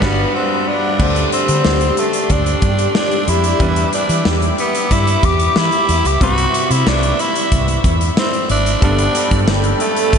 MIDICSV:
0, 0, Header, 1, 6, 480
1, 0, Start_track
1, 0, Tempo, 652174
1, 733, Time_signature, 4, 2, 24, 8
1, 7494, End_track
2, 0, Start_track
2, 0, Title_t, "Analog synth pad"
2, 0, Program_c, 0, 89
2, 0, Note_on_c, 0, 55, 77
2, 0, Note_on_c, 0, 78, 70
2, 0, Note_on_c, 0, 83, 85
2, 708, Note_off_c, 0, 55, 0
2, 714, Note_off_c, 0, 78, 0
2, 715, Note_off_c, 0, 83, 0
2, 734, Note_on_c, 0, 84, 93
2, 735, Note_on_c, 0, 67, 84
2, 735, Note_on_c, 0, 74, 74
2, 2634, Note_off_c, 0, 84, 0
2, 2635, Note_off_c, 0, 74, 0
2, 2654, Note_on_c, 0, 86, 95
2, 2657, Note_on_c, 0, 76, 75
2, 4545, Note_off_c, 0, 67, 0
2, 4555, Note_off_c, 0, 86, 0
2, 4556, Note_off_c, 0, 76, 0
2, 4577, Note_on_c, 0, 76, 75
2, 6476, Note_off_c, 0, 76, 0
2, 6493, Note_on_c, 0, 69, 86
2, 6495, Note_on_c, 0, 79, 76
2, 6495, Note_on_c, 0, 83, 90
2, 7494, Note_off_c, 0, 69, 0
2, 7494, Note_off_c, 0, 79, 0
2, 7494, Note_off_c, 0, 83, 0
2, 7494, End_track
3, 0, Start_track
3, 0, Title_t, "Grand piano"
3, 0, Program_c, 1, 0
3, 0, Control_c, 1, 64, 127
3, 0, Note_on_c, 1, 43, 89
3, 0, Note_on_c, 1, 55, 91
3, 0, Note_on_c, 1, 62, 91
3, 0, Note_on_c, 1, 66, 91
3, 0, Note_on_c, 1, 71, 91
3, 8, Note_off_c, 1, 55, 0
3, 8, Note_on_c, 1, 55, 91
3, 13, Note_off_c, 1, 62, 0
3, 13, Note_on_c, 1, 62, 90
3, 16, Note_off_c, 1, 43, 0
3, 16, Note_on_c, 1, 43, 90
3, 21, Note_off_c, 1, 66, 0
3, 21, Note_on_c, 1, 66, 93
3, 25, Note_off_c, 1, 71, 0
3, 25, Note_on_c, 1, 71, 92
3, 174, Note_off_c, 1, 55, 0
3, 176, Note_off_c, 1, 62, 0
3, 178, Note_off_c, 1, 43, 0
3, 181, Note_off_c, 1, 66, 0
3, 183, Note_off_c, 1, 71, 0
3, 724, Note_on_c, 1, 57, 61
3, 731, Note_on_c, 1, 62, 58
3, 734, Note_on_c, 1, 50, 62
3, 736, Note_on_c, 1, 67, 58
3, 743, Control_c, 1, 64, 0
3, 744, Note_on_c, 1, 72, 70
3, 864, Control_c, 1, 64, 127
3, 1424, Note_off_c, 1, 50, 0
3, 2619, Note_off_c, 1, 57, 0
3, 2623, Note_off_c, 1, 62, 0
3, 2625, Note_off_c, 1, 67, 0
3, 2629, Note_off_c, 1, 72, 0
3, 2642, Note_on_c, 1, 55, 65
3, 2650, Note_on_c, 1, 62, 59
3, 2653, Note_on_c, 1, 52, 60
3, 2655, Note_on_c, 1, 64, 58
3, 2660, Note_on_c, 1, 71, 72
3, 2664, Control_c, 1, 64, 0
3, 2801, Control_c, 1, 64, 127
3, 3344, Note_off_c, 1, 52, 0
3, 4538, Note_off_c, 1, 55, 0
3, 4542, Note_off_c, 1, 62, 0
3, 4545, Note_off_c, 1, 64, 0
3, 4547, Note_off_c, 1, 71, 0
3, 4565, Note_on_c, 1, 55, 64
3, 4574, Note_on_c, 1, 48, 65
3, 4574, Note_on_c, 1, 60, 63
3, 4580, Note_on_c, 1, 64, 63
3, 4583, Control_c, 1, 64, 0
3, 4584, Note_on_c, 1, 71, 73
3, 4732, Control_c, 1, 64, 127
3, 5264, Note_off_c, 1, 48, 0
3, 6460, Note_off_c, 1, 55, 0
3, 6464, Note_off_c, 1, 60, 0
3, 6467, Note_off_c, 1, 64, 0
3, 6469, Note_off_c, 1, 71, 0
3, 6486, Note_on_c, 1, 55, 67
3, 6491, Note_on_c, 1, 59, 60
3, 6493, Note_on_c, 1, 43, 66
3, 6497, Note_on_c, 1, 62, 62
3, 6503, Control_c, 1, 64, 0
3, 6504, Note_on_c, 1, 69, 75
3, 6643, Control_c, 1, 64, 127
3, 7184, Note_off_c, 1, 43, 0
3, 7494, Note_off_c, 1, 55, 0
3, 7494, Note_off_c, 1, 59, 0
3, 7494, Note_off_c, 1, 62, 0
3, 7494, Note_off_c, 1, 69, 0
3, 7494, End_track
4, 0, Start_track
4, 0, Title_t, "Tenor saxophone"
4, 0, Program_c, 2, 66
4, 0, Note_on_c, 2, 59, 81
4, 256, Note_off_c, 2, 59, 0
4, 260, Note_on_c, 2, 60, 82
4, 502, Note_on_c, 2, 62, 84
4, 513, Note_off_c, 2, 60, 0
4, 978, Note_off_c, 2, 62, 0
4, 982, Note_on_c, 2, 60, 93
4, 1465, Note_on_c, 2, 57, 81
4, 1476, Note_off_c, 2, 60, 0
4, 1706, Note_on_c, 2, 62, 91
4, 1717, Note_off_c, 2, 57, 0
4, 2180, Note_off_c, 2, 62, 0
4, 2186, Note_on_c, 2, 62, 92
4, 2423, Note_on_c, 2, 64, 101
4, 2434, Note_off_c, 2, 62, 0
4, 2898, Note_off_c, 2, 64, 0
4, 2902, Note_on_c, 2, 62, 94
4, 3160, Note_off_c, 2, 62, 0
4, 3385, Note_on_c, 2, 59, 90
4, 3624, Note_on_c, 2, 64, 102
4, 3635, Note_off_c, 2, 59, 0
4, 3862, Note_on_c, 2, 67, 104
4, 3873, Note_off_c, 2, 64, 0
4, 4104, Note_on_c, 2, 64, 99
4, 4115, Note_off_c, 2, 67, 0
4, 4465, Note_on_c, 2, 67, 99
4, 4476, Note_off_c, 2, 64, 0
4, 4579, Note_off_c, 2, 67, 0
4, 4585, Note_on_c, 2, 66, 106
4, 4942, Note_on_c, 2, 64, 94
4, 4953, Note_off_c, 2, 66, 0
4, 5065, Note_on_c, 2, 62, 98
4, 5076, Note_off_c, 2, 64, 0
4, 5305, Note_on_c, 2, 64, 91
4, 5316, Note_off_c, 2, 62, 0
4, 5779, Note_off_c, 2, 64, 0
4, 6026, Note_on_c, 2, 60, 99
4, 6243, Note_off_c, 2, 60, 0
4, 6265, Note_on_c, 2, 62, 98
4, 6483, Note_off_c, 2, 62, 0
4, 6506, Note_on_c, 2, 62, 102
4, 6950, Note_off_c, 2, 62, 0
4, 7222, Note_on_c, 2, 57, 117
4, 7494, Note_off_c, 2, 57, 0
4, 7494, End_track
5, 0, Start_track
5, 0, Title_t, "Fingered electric bass"
5, 0, Program_c, 3, 33
5, 14, Note_on_c, 3, 31, 98
5, 177, Note_off_c, 3, 31, 0
5, 733, Note_on_c, 3, 38, 99
5, 913, Note_off_c, 3, 38, 0
5, 1095, Note_on_c, 3, 50, 97
5, 1184, Note_off_c, 3, 50, 0
5, 1214, Note_on_c, 3, 38, 74
5, 1394, Note_off_c, 3, 38, 0
5, 1693, Note_on_c, 3, 38, 90
5, 1873, Note_off_c, 3, 38, 0
5, 1931, Note_on_c, 3, 43, 92
5, 2112, Note_off_c, 3, 43, 0
5, 2412, Note_on_c, 3, 41, 86
5, 2592, Note_off_c, 3, 41, 0
5, 2651, Note_on_c, 3, 40, 105
5, 2832, Note_off_c, 3, 40, 0
5, 3012, Note_on_c, 3, 52, 96
5, 3102, Note_off_c, 3, 52, 0
5, 3132, Note_on_c, 3, 40, 79
5, 3312, Note_off_c, 3, 40, 0
5, 3613, Note_on_c, 3, 43, 84
5, 3793, Note_off_c, 3, 43, 0
5, 3852, Note_on_c, 3, 40, 86
5, 4033, Note_off_c, 3, 40, 0
5, 4093, Note_on_c, 3, 52, 92
5, 4183, Note_off_c, 3, 52, 0
5, 4334, Note_on_c, 3, 40, 88
5, 4424, Note_off_c, 3, 40, 0
5, 4452, Note_on_c, 3, 37, 77
5, 4543, Note_off_c, 3, 37, 0
5, 4571, Note_on_c, 3, 36, 104
5, 4752, Note_off_c, 3, 36, 0
5, 4934, Note_on_c, 3, 48, 91
5, 5024, Note_off_c, 3, 48, 0
5, 5054, Note_on_c, 3, 36, 90
5, 5234, Note_off_c, 3, 36, 0
5, 5535, Note_on_c, 3, 36, 90
5, 5715, Note_off_c, 3, 36, 0
5, 5771, Note_on_c, 3, 40, 90
5, 5952, Note_off_c, 3, 40, 0
5, 6253, Note_on_c, 3, 32, 96
5, 6433, Note_off_c, 3, 32, 0
5, 6494, Note_on_c, 3, 31, 100
5, 6674, Note_off_c, 3, 31, 0
5, 6855, Note_on_c, 3, 43, 96
5, 6944, Note_off_c, 3, 43, 0
5, 6973, Note_on_c, 3, 31, 90
5, 7153, Note_off_c, 3, 31, 0
5, 7458, Note_on_c, 3, 33, 96
5, 7494, Note_off_c, 3, 33, 0
5, 7494, End_track
6, 0, Start_track
6, 0, Title_t, "Drums"
6, 14, Note_on_c, 9, 36, 92
6, 15, Note_on_c, 9, 38, 97
6, 15, Note_on_c, 9, 49, 71
6, 88, Note_off_c, 9, 36, 0
6, 88, Note_off_c, 9, 38, 0
6, 88, Note_off_c, 9, 49, 0
6, 733, Note_on_c, 9, 36, 110
6, 733, Note_on_c, 9, 49, 84
6, 807, Note_off_c, 9, 36, 0
6, 807, Note_off_c, 9, 49, 0
6, 854, Note_on_c, 9, 42, 55
6, 927, Note_off_c, 9, 42, 0
6, 974, Note_on_c, 9, 42, 71
6, 1048, Note_off_c, 9, 42, 0
6, 1092, Note_on_c, 9, 42, 61
6, 1166, Note_off_c, 9, 42, 0
6, 1211, Note_on_c, 9, 38, 101
6, 1285, Note_off_c, 9, 38, 0
6, 1330, Note_on_c, 9, 42, 50
6, 1404, Note_off_c, 9, 42, 0
6, 1451, Note_on_c, 9, 42, 55
6, 1524, Note_off_c, 9, 42, 0
6, 1570, Note_on_c, 9, 42, 55
6, 1644, Note_off_c, 9, 42, 0
6, 1690, Note_on_c, 9, 42, 77
6, 1693, Note_on_c, 9, 36, 79
6, 1764, Note_off_c, 9, 42, 0
6, 1767, Note_off_c, 9, 36, 0
6, 1812, Note_on_c, 9, 42, 49
6, 1885, Note_off_c, 9, 42, 0
6, 1928, Note_on_c, 9, 42, 62
6, 1930, Note_on_c, 9, 36, 93
6, 2002, Note_off_c, 9, 42, 0
6, 2004, Note_off_c, 9, 36, 0
6, 2050, Note_on_c, 9, 42, 59
6, 2123, Note_off_c, 9, 42, 0
6, 2171, Note_on_c, 9, 38, 112
6, 2245, Note_off_c, 9, 38, 0
6, 2293, Note_on_c, 9, 42, 45
6, 2367, Note_off_c, 9, 42, 0
6, 2412, Note_on_c, 9, 42, 68
6, 2486, Note_off_c, 9, 42, 0
6, 2529, Note_on_c, 9, 42, 47
6, 2603, Note_off_c, 9, 42, 0
6, 2648, Note_on_c, 9, 42, 78
6, 2650, Note_on_c, 9, 36, 109
6, 2722, Note_off_c, 9, 42, 0
6, 2723, Note_off_c, 9, 36, 0
6, 2769, Note_on_c, 9, 42, 60
6, 2843, Note_off_c, 9, 42, 0
6, 2891, Note_on_c, 9, 42, 72
6, 2964, Note_off_c, 9, 42, 0
6, 3012, Note_on_c, 9, 42, 57
6, 3086, Note_off_c, 9, 42, 0
6, 3130, Note_on_c, 9, 38, 106
6, 3204, Note_off_c, 9, 38, 0
6, 3253, Note_on_c, 9, 42, 54
6, 3327, Note_off_c, 9, 42, 0
6, 3374, Note_on_c, 9, 42, 57
6, 3447, Note_off_c, 9, 42, 0
6, 3493, Note_on_c, 9, 42, 58
6, 3567, Note_off_c, 9, 42, 0
6, 3612, Note_on_c, 9, 42, 77
6, 3614, Note_on_c, 9, 36, 77
6, 3686, Note_off_c, 9, 42, 0
6, 3687, Note_off_c, 9, 36, 0
6, 3734, Note_on_c, 9, 42, 50
6, 3808, Note_off_c, 9, 42, 0
6, 3851, Note_on_c, 9, 36, 96
6, 3851, Note_on_c, 9, 42, 70
6, 3924, Note_off_c, 9, 42, 0
6, 3925, Note_off_c, 9, 36, 0
6, 3971, Note_on_c, 9, 42, 59
6, 4045, Note_off_c, 9, 42, 0
6, 4091, Note_on_c, 9, 38, 118
6, 4165, Note_off_c, 9, 38, 0
6, 4212, Note_on_c, 9, 42, 45
6, 4285, Note_off_c, 9, 42, 0
6, 4334, Note_on_c, 9, 42, 74
6, 4407, Note_off_c, 9, 42, 0
6, 4453, Note_on_c, 9, 42, 48
6, 4526, Note_off_c, 9, 42, 0
6, 4571, Note_on_c, 9, 36, 110
6, 4573, Note_on_c, 9, 42, 81
6, 4645, Note_off_c, 9, 36, 0
6, 4646, Note_off_c, 9, 42, 0
6, 4694, Note_on_c, 9, 42, 56
6, 4767, Note_off_c, 9, 42, 0
6, 4816, Note_on_c, 9, 42, 80
6, 4889, Note_off_c, 9, 42, 0
6, 4937, Note_on_c, 9, 42, 59
6, 5011, Note_off_c, 9, 42, 0
6, 5054, Note_on_c, 9, 38, 108
6, 5128, Note_off_c, 9, 38, 0
6, 5174, Note_on_c, 9, 42, 53
6, 5247, Note_off_c, 9, 42, 0
6, 5294, Note_on_c, 9, 42, 55
6, 5368, Note_off_c, 9, 42, 0
6, 5413, Note_on_c, 9, 42, 55
6, 5487, Note_off_c, 9, 42, 0
6, 5533, Note_on_c, 9, 42, 83
6, 5534, Note_on_c, 9, 36, 85
6, 5607, Note_off_c, 9, 42, 0
6, 5608, Note_off_c, 9, 36, 0
6, 5652, Note_on_c, 9, 42, 52
6, 5726, Note_off_c, 9, 42, 0
6, 5771, Note_on_c, 9, 42, 67
6, 5772, Note_on_c, 9, 36, 91
6, 5845, Note_off_c, 9, 42, 0
6, 5846, Note_off_c, 9, 36, 0
6, 5894, Note_on_c, 9, 42, 59
6, 5968, Note_off_c, 9, 42, 0
6, 6014, Note_on_c, 9, 38, 118
6, 6088, Note_off_c, 9, 38, 0
6, 6134, Note_on_c, 9, 42, 45
6, 6208, Note_off_c, 9, 42, 0
6, 6252, Note_on_c, 9, 42, 75
6, 6325, Note_off_c, 9, 42, 0
6, 6375, Note_on_c, 9, 42, 49
6, 6449, Note_off_c, 9, 42, 0
6, 6493, Note_on_c, 9, 36, 118
6, 6493, Note_on_c, 9, 42, 86
6, 6567, Note_off_c, 9, 36, 0
6, 6567, Note_off_c, 9, 42, 0
6, 6613, Note_on_c, 9, 42, 58
6, 6687, Note_off_c, 9, 42, 0
6, 6733, Note_on_c, 9, 42, 76
6, 6807, Note_off_c, 9, 42, 0
6, 6853, Note_on_c, 9, 42, 61
6, 6855, Note_on_c, 9, 36, 87
6, 6927, Note_off_c, 9, 42, 0
6, 6929, Note_off_c, 9, 36, 0
6, 6974, Note_on_c, 9, 38, 109
6, 6975, Note_on_c, 9, 54, 62
6, 7048, Note_off_c, 9, 38, 0
6, 7048, Note_off_c, 9, 54, 0
6, 7093, Note_on_c, 9, 42, 51
6, 7166, Note_off_c, 9, 42, 0
6, 7213, Note_on_c, 9, 42, 58
6, 7287, Note_off_c, 9, 42, 0
6, 7335, Note_on_c, 9, 42, 58
6, 7409, Note_off_c, 9, 42, 0
6, 7456, Note_on_c, 9, 42, 83
6, 7457, Note_on_c, 9, 36, 85
6, 7494, Note_off_c, 9, 36, 0
6, 7494, Note_off_c, 9, 42, 0
6, 7494, End_track
0, 0, End_of_file